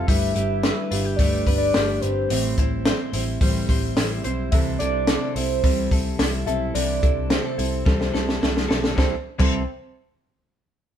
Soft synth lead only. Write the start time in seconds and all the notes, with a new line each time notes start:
0.07 E5
1.16 D5
1.58 D5
2.01 C5
4.52 E5
4.79 D5
5.35 C5
6.46 E5
6.74 D5
7.29 C5
8.98 C5
9.39 C5